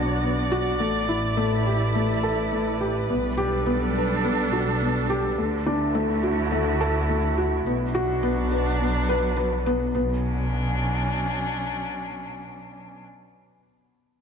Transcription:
Already playing: double bass section B1, felt piano B3 D4 F#4 B4, string quartet B3 F#4 C#5 D5
0.24 felt piano B3
0.52 felt piano F#4
0.80 double bass section A1, felt piano A3, string quartet A3
1.02 string quartet E4
1.09 felt piano E4
1.37 felt piano A3
1.45 string quartet B4
1.66 felt piano G4
1.95 felt piano A3
2.23 felt piano A4
2.52 felt piano A3
2.81 felt piano G4
3.08 double bass section B1, string quartet G3, felt piano B3
3.29 string quartet D4
3.38 felt piano G4, string quartet A4
3.66 felt piano B3
3.95 felt piano B4
4.24 felt piano B3
4.53 felt piano F#4
4.81 felt piano B3
5.10 felt piano G4
5.38 double bass section D2, string quartet D3, felt piano A3
5.47 string quartet A3
5.65 felt piano D4, string quartet E4
5.83 string quartet F#4
5.95 felt piano A3
6.23 felt piano F#4
6.52 felt piano A3
6.81 felt piano A4
7.09 felt piano A3
7.38 felt piano F#4
7.66 double bass section B1, string quartet B2, felt piano B3
7.84 string quartet D4
7.93 string quartet F#3, felt piano F#4
8.23 felt piano B3
8.51 felt piano B4
8.80 felt piano B3
9.09 felt piano B4
9.37 felt piano B4
9.66 felt piano B3
9.95 double bass section B1, string quartet B2, felt piano B3
10.04 string quartet F#3
10.12 string quartet C#4
10.21 string quartet D4

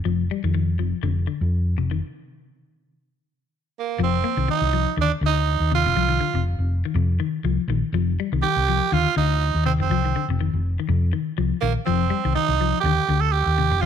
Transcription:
0.05 fingered electric bass F1, clean electric guitar F3
0.31 clean electric guitar G3
0.44 fingered electric bass F2, clean electric guitar D#3
0.55 clean electric guitar D#3
0.79 fingered electric bass F1, clean electric guitar F3
1.03 fingered electric bass F1, clean electric guitar D3
1.27 clean electric guitar D3
1.41 fingered electric bass F2
1.77 fingered electric bass F1, clean electric guitar C3
1.91 clean electric guitar D#3
3.79 tenor saxophone A#3
3.99 fingered electric bass F1, clean electric guitar F3
4.03 tenor saxophone C4
4.24 clean electric guitar A#3
4.37 fingered electric bass C2, clean electric guitar D#3
4.48 clean electric guitar D#3, tenor saxophone D#4, muted fingered electric bass stroke
4.61 fingered electric bass C2
4.73 clean electric guitar F3
4.97 fingered electric bass D#2, clean electric guitar D3
5.01 tenor saxophone D4
5.21 fingered electric bass D2, clean electric guitar D3
5.26 tenor saxophone D#4
5.60 fingered electric bass D#2
5.71 clean electric guitar C3, tenor saxophone F4
5.85 fingered electric bass F1, clean electric guitar C3
5.95 fingered electric bass C2, clean electric guitar F3
6.09 clean electric guitar D#3
6.21 clean electric guitar D3
6.34 fingered electric bass F1, clean electric guitar C3
6.58 fingered electric bass F1
6.85 clean electric guitar D#3
6.95 fingered electric bass F2, clean electric guitar C3
7.20 clean electric guitar D#3
7.44 fingered electric bass C2, clean electric guitar F3
7.68 fingered electric bass A#1, clean electric guitar D#3
7.92 fingered electric bass F1, clean electric guitar F3
8.20 clean electric guitar G3
8.32 fingered electric bass C2, clean electric guitar D#3
8.42 clean electric guitar D#3, tenor saxophone G4, muted fingered electric bass stroke
8.56 fingered electric bass C2
8.69 clean electric guitar F3
8.92 fingered electric bass D#2, clean electric guitar D3, tenor saxophone F4
9.16 fingered electric bass D2, clean electric guitar D3, tenor saxophone D#4
9.55 fingered electric bass D#2
9.66 clean electric guitar C3, tenor saxophone C4
9.79 fingered electric bass F1, clean electric guitar D#3, tenor saxophone C4
9.90 fingered electric bass C2, clean electric guitar F3
10.05 clean electric guitar D#3
10.16 clean electric guitar D3
10.28 fingered electric bass F1, clean electric guitar C3
10.41 clean electric guitar D#3
10.53 fingered electric bass F1
10.80 clean electric guitar D#3
10.89 fingered electric bass F2, clean electric guitar C3
11.13 clean electric guitar D#3
11.38 fingered electric bass C2, clean electric guitar F3
11.61 fingered electric bass A#1, clean electric guitar D#3, tenor saxophone A#3
11.86 fingered electric bass F1, clean electric guitar F3, tenor saxophone C4
12.10 clean electric guitar G3
12.25 fingered electric bass C2, clean electric guitar D#3
12.35 clean electric guitar D#3, tenor saxophone D#4, muted fingered electric bass stroke
12.49 fingered electric bass C2
12.61 clean electric guitar F3
12.80 fingered electric bass D#2, tenor saxophone G4
12.86 clean electric guitar D3
13.09 fingered electric bass D2, clean electric guitar D3
13.21 tenor saxophone A4
13.32 tenor saxophone G4
13.46 fingered electric bass D#2
13.58 clean electric guitar C3
13.71 fingered electric bass F1, muted clean electric guitar stroke
13.81 fingered electric bass C2, clean electric guitar F3, tenor saxophone F4

